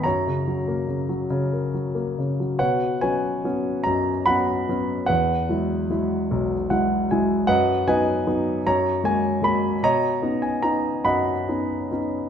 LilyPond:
<<
  \new Staff \with { instrumentName = "Grand piano" } { \time 6/8 \key b \major \tempo 4. = 49 << { ais''4. r4. | fis''8 gis''4 ais''8 b''4 | fis''2~ fis''8 r8 | fis''8 gis''4 ais''8 gis''8 b''8 |
ais''8. gis''16 ais''8 b''4 r8 | } \\ { cis''4. r4. | <b' cis''>8 <b' cis''>4. fis''4 | b'2~ b'8 r8 | <b' dis''>8 <b' dis''>4 cis''4. |
<cis'' dis''>4. <dis'' fis''>4. | } >> }
  \new Staff \with { instrumentName = "Grand piano" } { \time 6/8 \key b \major fis,16 cis16 fis16 ais16 cis16 fis16 cis16 ais'16 fis16 ais16 cis16 fis16 | b,8 <fis b cis'>8 <fis b cis'>8 fis,8 <fis b cis'>8 <fis b cis'>8 | e,8 <fis gis e'>8 <fis gis e'>8 b,,8 <fis gis e' fis''>8 <fis gis e' gis''>8 | fis,8 <fis b dis'>8 <fis b dis'>8 fis,8 <gis ais fis'>8 <gis ais fis'>8 |
b,8 <b cis' dis'>8 <b cis' dis'>8 fis,8 <b cis' dis'>8 <b cis' dis'>8 | }
>>